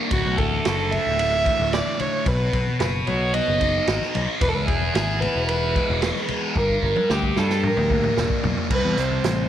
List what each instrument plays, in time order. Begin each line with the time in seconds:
Already playing: distorted electric guitar G3 A#3 D4
0.11 picked electric bass D1, distorted electric guitar D2, violin F#4, kick, ride
0.25 picked electric bass B1
0.38 picked electric bass D1, violin A4, kick, ride
0.52 high conga
0.65 picked electric bass F#1, distorted electric guitar F#4, snare, ride
0.91 distorted electric guitar A3, violin E5, ride, low conga
1.07 picked electric bass D1
1.18 distorted electric guitar A2, ride
1.45 distorted electric guitar D3, kick, ride, high conga
1.59 picked electric bass D1
1.72 distorted electric guitar A3, violin D5, snare, ride
1.87 high conga
1.99 distorted electric guitar D3, violin C#5, ride, high conga, low conga
2.26 picked electric bass B1, distorted electric guitar B2, violin B4, kick, ride
2.53 picked electric bass B1, kick, ride
2.67 high conga
2.80 picked electric bass F#1, distorted electric guitar B4, snare, ride
3.06 picked electric bass B1, distorted electric guitar F#4, violin C#5, ride, low conga
3.33 distorted electric guitar B3, violin D#5, ride
3.48 picked electric bass F#1
3.60 distorted electric guitar D#4, kick, ride, high conga
3.87 picked electric bass G#1, distorted electric guitar F#4, snare, ride
4.02 snare, high conga
4.15 picked electric bass B1, distorted electric guitar D#4, ride, high conga, low conga
4.41 picked electric bass E1, distorted electric guitar E2, violin B4, kick, ride
4.48 violin A4
4.54 picked electric bass C#2, violin B4
4.67 picked electric bass E1, violin G#4, kick, ride
4.82 high conga
4.94 picked electric bass G#1, distorted electric guitar E4, snare, ride
5.20 distorted electric guitar B3, violin B4, ride, low conga
5.35 picked electric bass E1
5.47 distorted electric guitar E3, violin B4, ride
5.75 distorted electric guitar G#3, kick, ride, high conga
5.90 picked electric bass E1
6.02 distorted electric guitar B3, snare, ride
6.16 snare, high conga
6.28 distorted electric guitar G#3, ride, high conga, low conga
6.56 picked electric bass G1, distorted electric guitar G2, violin A#4, kick
6.69 kick
6.83 picked electric bass G1, violin A#4, kick, low conga
6.96 high tom, high conga
7.10 picked electric bass D2, distorted electric guitar G4, violin G4, snare
7.23 kick
7.36 picked electric bass G2, distorted electric guitar D4, violin A4, snare, low conga
7.50 snare
7.63 distorted electric guitar G3, violin A#4, mid tom
7.77 picked electric bass D2, mid tom
7.90 distorted electric guitar A#3, kick, high conga
8.03 mid tom
8.17 picked electric bass E1, distorted electric guitar D4, snare
8.30 kick, high conga
8.43 picked electric bass B1, distorted electric guitar A#3, floor tom, high conga, low conga
8.57 floor tom
8.69 picked electric bass C2, distorted electric guitar C3 G3, violin B4, kick, crash
8.73 distorted electric guitar C4
8.84 picked electric bass E2
8.97 picked electric bass C2, violin C5, closed hi-hat
9.11 high conga
9.24 picked electric bass A1, snare, closed hi-hat